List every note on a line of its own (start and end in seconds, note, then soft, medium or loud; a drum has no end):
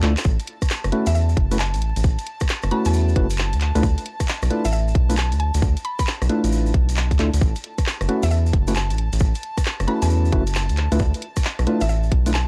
0.00 0.16 D2 medium
0.00 0.14 A3 medium
0.00 0.14 D4 medium
0.00 0.14 E4 medium
0.00 0.14 F4 medium
0.00 0.14 A4 medium
0.00 0.24 A5 medium
0.00 clap medium
0.00 closed hi-hat loud
0.17 clap loud
0.17 closed hi-hat medium
0.17 maracas medium
0.24 0.38 A1 loud
0.24 7.40 A5 medium
0.24 kick loud
0.24 maracas medium
0.40 closed hi-hat medium
0.40 maracas soft
0.47 closed hi-hat loud
0.62 kick medium
0.62 cross-stick medium
0.62 closed hi-hat medium
0.62 maracas medium
0.70 clap loud
0.70 maracas medium
0.84 0.91 F#1 medium
0.84 cross-stick medium
0.84 closed hi-hat soft
0.84 maracas soft
0.92 1.08 A3 medium
0.92 1.08 C#4 medium
0.92 1.08 E4 medium
0.92 1.08 F#4 medium
0.92 1.08 B4 medium
0.92 closed hi-hat loud
1.06 1.36 E2 loud
1.06 1.12 E5 medium
1.06 closed hi-hat medium
1.06 maracas medium
1.15 1.24 E5 medium
1.15 maracas medium
1.29 maracas soft
1.37 1.76 F#1 medium
1.37 kick loud
1.37 closed hi-hat loud
1.51 1.57 A3 medium
1.51 1.57 C#4 medium
1.51 1.57 E4 medium
1.51 1.57 F#4 medium
1.51 1.57 B4 medium
1.51 closed hi-hat medium
1.51 maracas medium
1.59 1.78 A5 loud
1.59 clap loud
1.59 maracas medium
1.74 1.93 A1 medium
1.74 closed hi-hat medium
1.74 maracas soft
1.82 closed hi-hat loud
1.96 2.03 A1 medium
1.96 closed hi-hat medium
1.96 maracas medium
2.04 2.17 A1 loud
2.04 kick loud
2.04 maracas medium
2.18 closed hi-hat medium
2.18 maracas soft
2.27 closed hi-hat loud
2.40 kick medium
2.40 cross-stick medium
2.40 closed hi-hat medium
2.40 maracas medium
2.49 clap loud
2.49 maracas medium
2.62 2.70 F#1 medium
2.62 cross-stick medium
2.62 closed hi-hat soft
2.62 maracas soft
2.71 3.14 A3 medium
2.71 3.14 C#4 medium
2.71 3.14 E4 medium
2.71 3.14 F#4 medium
2.71 3.14 B4 medium
2.71 2.83 B5 medium
2.71 closed hi-hat loud
2.85 3.15 E2 loud
2.85 3.16 A5 loud
2.85 closed hi-hat medium
2.85 maracas medium
2.93 maracas medium
3.08 maracas soft
3.16 3.54 F#1 medium
3.16 3.27 A3 medium
3.16 3.27 C#4 medium
3.16 3.27 E4 medium
3.16 3.27 F#4 medium
3.16 3.27 B4 medium
3.16 kick loud
3.16 closed hi-hat loud
3.30 closed hi-hat medium
3.30 maracas medium
3.37 clap loud
3.37 maracas medium
3.53 3.72 D2 medium
3.53 closed hi-hat medium
3.53 maracas soft
3.61 clap medium
3.61 closed hi-hat loud
3.75 3.82 D2 medium
3.75 3.86 A3 medium
3.75 3.86 D4 medium
3.75 3.86 E4 medium
3.75 3.86 F4 medium
3.75 3.86 B4 loud
3.75 closed hi-hat medium
3.75 maracas medium
3.83 3.96 D2 loud
3.83 kick loud
3.83 maracas medium
3.98 closed hi-hat medium
3.98 maracas soft
4.06 closed hi-hat loud
4.20 kick medium
4.20 cross-stick medium
4.20 closed hi-hat medium
4.20 maracas medium
4.28 clap loud
4.28 maracas medium
4.42 4.49 B1 medium
4.42 cross-stick medium
4.42 closed hi-hat soft
4.42 maracas soft
4.50 4.66 A3 medium
4.50 4.66 D4 medium
4.50 4.66 E4 medium
4.50 4.66 F4 medium
4.50 4.66 B4 medium
4.50 closed hi-hat medium
4.65 4.94 A1 loud
4.65 4.70 E5 medium
4.65 closed hi-hat medium
4.65 maracas medium
4.72 4.82 E5 medium
4.72 maracas medium
4.88 maracas soft
4.95 5.34 B1 medium
4.95 kick loud
4.95 closed hi-hat loud
5.09 5.16 A3 medium
5.09 5.16 D4 medium
5.09 5.16 E4 medium
5.09 5.15 F4 medium
5.09 5.15 B4 medium
5.09 closed hi-hat medium
5.09 maracas medium
5.17 5.36 A5 loud
5.17 clap loud
5.17 maracas medium
5.32 5.51 D2 medium
5.32 closed hi-hat medium
5.32 maracas soft
5.40 5.58 A5 medium
5.40 closed hi-hat medium
5.54 5.61 D2 medium
5.54 closed hi-hat medium
5.54 maracas medium
5.62 5.75 D2 loud
5.62 kick loud
5.62 maracas medium
5.77 closed hi-hat medium
5.77 maracas soft
5.85 5.94 B5 medium
5.85 closed hi-hat loud
5.99 6.04 B5 medium
5.99 kick medium
5.99 cross-stick soft
5.99 closed hi-hat medium
5.99 maracas medium
6.07 clap loud
6.07 maracas medium
6.22 6.29 B1 medium
6.22 cross-stick medium
6.22 closed hi-hat soft
6.22 maracas soft
6.29 6.72 A3 medium
6.29 6.72 D4 medium
6.29 6.72 E4 medium
6.29 6.72 F4 medium
6.29 6.72 B4 medium
6.29 closed hi-hat medium
6.44 6.73 A1 loud
6.44 closed hi-hat medium
6.44 maracas medium
6.52 maracas medium
6.66 maracas soft
6.74 7.13 B1 medium
6.74 kick loud
6.74 closed hi-hat loud
6.89 closed hi-hat medium
6.89 maracas medium
6.97 clap loud
6.97 maracas medium
7.11 7.30 D2 medium
7.11 kick medium
7.11 closed hi-hat medium
7.11 maracas soft
7.19 7.30 A3 medium
7.19 7.30 D4 medium
7.19 7.30 E4 medium
7.19 7.30 F4 medium
7.19 7.30 A4 medium
7.19 clap medium
7.19 closed hi-hat medium
7.34 7.41 D2 medium
7.34 closed hi-hat medium
7.34 maracas medium
7.41 7.54 A1 loud
7.41 12.48 A5 medium
7.41 kick loud
7.41 maracas medium
7.55 closed hi-hat medium
7.55 maracas soft
7.64 closed hi-hat loud
7.78 kick medium
7.78 cross-stick medium
7.78 closed hi-hat medium
7.78 maracas medium
7.86 clap loud
7.86 maracas medium
8.01 8.08 F#1 medium
8.01 cross-stick medium
8.01 closed hi-hat soft
8.01 maracas soft
8.09 8.25 A3 medium
8.09 8.25 C#4 medium
8.09 8.25 E4 medium
8.09 8.25 F#4 medium
8.09 8.25 B4 medium
8.09 closed hi-hat medium
8.23 8.52 E2 loud
8.23 8.28 E5 medium
8.23 closed hi-hat medium
8.23 maracas medium
8.31 8.40 E5 medium
8.31 maracas medium
8.46 maracas soft
8.53 8.92 F#1 medium
8.53 kick loud
8.53 closed hi-hat loud
8.67 8.74 A3 medium
8.67 8.74 C#4 medium
8.67 8.74 E4 medium
8.67 8.74 F#4 medium
8.67 8.74 B4 medium
8.67 closed hi-hat medium
8.67 maracas medium
8.75 8.94 A5 loud
8.75 clap loud
8.75 maracas medium
8.90 9.09 A1 medium
8.90 closed hi-hat medium
8.90 maracas soft
8.98 closed hi-hat medium
9.13 9.20 A1 medium
9.13 closed hi-hat medium
9.13 maracas medium
9.20 9.33 A1 loud
9.20 kick loud
9.20 maracas medium
9.34 closed hi-hat medium
9.34 maracas soft
9.43 closed hi-hat loud
9.57 kick medium
9.57 cross-stick soft
9.57 closed hi-hat medium
9.57 maracas medium
9.65 clap loud
9.65 maracas medium
9.80 9.87 F#1 medium
9.80 cross-stick medium
9.80 closed hi-hat soft
9.80 maracas soft
9.87 10.31 A3 medium
9.87 10.31 C#4 medium
9.87 10.31 E4 medium
9.87 10.31 F#4 medium
9.87 10.31 B4 medium
9.87 9.99 B5 medium
9.87 closed hi-hat loud
10.02 10.31 E2 loud
10.02 10.32 A5 medium
10.02 closed hi-hat medium
10.02 maracas medium
10.10 maracas medium
10.25 maracas soft
10.32 10.71 F#1 medium
10.32 10.43 A3 medium
10.32 10.43 C#4 medium
10.32 10.43 E4 medium
10.32 10.43 F#4 medium
10.32 10.43 B4 medium
10.32 kick loud
10.32 closed hi-hat loud
10.47 closed hi-hat medium
10.47 maracas medium
10.55 clap loud
10.55 maracas medium
10.69 10.88 D2 medium
10.69 closed hi-hat medium
10.69 maracas soft
10.77 clap medium
10.77 closed hi-hat loud
10.92 10.99 D2 medium
10.92 11.03 A3 medium
10.92 11.03 D4 medium
10.92 11.03 E4 medium
10.92 11.03 F4 medium
10.92 11.03 B4 loud
10.92 closed hi-hat medium
10.92 maracas medium
10.99 11.13 D2 loud
10.99 kick loud
10.99 maracas medium
11.14 closed hi-hat medium
11.14 maracas soft
11.22 closed hi-hat loud
11.36 kick medium
11.36 cross-stick medium
11.36 closed hi-hat medium
11.36 maracas medium
11.44 clap loud
11.44 maracas medium
11.59 11.66 B1 medium
11.59 cross-stick medium
11.59 closed hi-hat soft
11.59 maracas soft
11.67 11.83 A3 medium
11.67 11.83 D4 medium
11.67 11.83 E4 medium
11.67 11.83 F4 medium
11.67 11.83 B4 medium
11.67 closed hi-hat medium
11.81 12.10 A1 loud
11.81 11.86 E5 medium
11.81 closed hi-hat medium
11.81 maracas medium
11.89 11.98 E5 medium
11.89 maracas medium
12.03 maracas soft
12.12 12.48 B1 medium
12.12 kick loud
12.12 closed hi-hat loud
12.26 12.32 A3 medium
12.26 12.32 D4 medium
12.26 12.32 E4 medium
12.26 12.32 F4 medium
12.26 12.32 B4 medium
12.26 closed hi-hat medium
12.26 maracas medium
12.34 12.48 A5 loud
12.34 clap loud
12.34 maracas medium